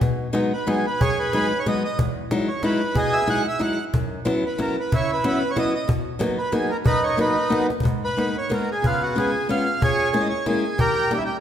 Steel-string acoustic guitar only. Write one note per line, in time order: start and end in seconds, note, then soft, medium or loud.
0.02 0.27 B2 medium
0.33 0.51 F#3 medium
0.33 0.51 G#3 medium
0.33 0.51 B3 medium
0.33 0.51 D#4 medium
0.67 0.85 F#3 medium
0.67 0.85 G#3 medium
0.67 0.85 B3 medium
0.67 0.85 D#4 medium
1.01 1.25 F#2 medium
1.34 1.51 F#3 medium
1.34 1.51 G#3 medium
1.34 1.51 B3 medium
1.34 1.51 D#4 medium
1.67 1.83 F#3 medium
1.67 1.83 G#3 medium
1.67 1.83 B3 medium
1.67 1.83 D#4 medium
2.00 2.23 E2 medium
2.31 2.48 F#3 medium
2.31 2.48 G#3 medium
2.31 2.48 D#4 medium
2.31 2.48 E4 medium
2.63 2.80 F#3 medium
2.63 2.80 G#3 medium
2.63 2.80 D#4 medium
2.63 2.80 E4 medium
2.94 3.19 B2 medium
3.27 3.45 F#3 medium
3.27 3.45 G#3 medium
3.27 3.45 D#4 medium
3.27 3.45 E4 medium
3.59 3.77 F#3 medium
3.59 3.77 G#3 medium
3.59 3.77 D#4 medium
3.59 3.77 E4 medium
3.93 4.18 F#2 medium
4.25 4.43 F#3 medium
4.25 4.43 B3 medium
4.25 4.43 C#4 medium
4.25 4.43 E4 medium
4.58 4.76 F#3 medium
4.58 4.76 B3 soft
4.58 4.76 C#4 medium
4.58 4.76 E4 medium
4.92 5.16 C#3 medium
5.24 5.41 F#3 medium
5.24 5.42 B3 medium
5.24 5.41 C#4 medium
5.24 5.41 E4 medium
5.56 5.74 F#3 medium
5.56 5.74 B3 medium
5.56 5.74 C#4 medium
5.56 5.73 E4 medium
5.88 6.12 B2 medium
6.19 6.37 F#3 medium
6.19 6.37 A#3 medium
6.19 6.37 B3 medium
6.19 6.37 D#4 medium
6.52 6.70 F#3 medium
6.52 6.70 A#3 medium
6.52 6.70 B3 medium
6.52 6.70 D#4 medium
6.84 7.10 F#2 medium
7.17 7.36 F#3 medium
7.17 7.35 A#3 medium
7.17 7.36 B3 medium
7.17 7.36 D#4 medium
7.50 7.69 F#3 medium
7.50 7.68 A#3 soft
7.50 7.68 B3 medium
7.50 7.69 D#4 medium
7.83 8.09 G#2 medium
8.17 8.35 G#3 soft
8.17 8.35 A#3 medium
8.17 8.35 B3 medium
8.17 8.35 D#4 medium
8.49 8.68 G#3 medium
8.49 8.68 A#3 medium
8.49 8.67 B3 medium
8.49 8.68 D#4 medium
8.82 9.07 C#3 medium
9.15 9.33 G#3 medium
9.15 9.33 B3 medium
9.15 9.33 C#4 medium
9.15 9.33 F4 medium
9.49 9.66 G#3 medium
9.49 9.66 B3 medium
9.49 9.66 C#4 medium
9.49 9.66 F4 medium
9.80 10.05 A#2 medium
10.13 10.30 G#3 medium
10.13 10.31 A#3 medium
10.13 10.31 C#4 medium
10.13 10.31 E4 medium
10.46 10.63 G#3 medium
10.46 10.63 A#3 medium
10.46 10.63 C#4 medium
10.46 10.63 E4 medium
10.78 11.03 D#3 medium
11.11 11.28 G3 medium
11.11 11.28 A#3 medium
11.11 11.28 C#4 soft
11.11 11.28 D#4 medium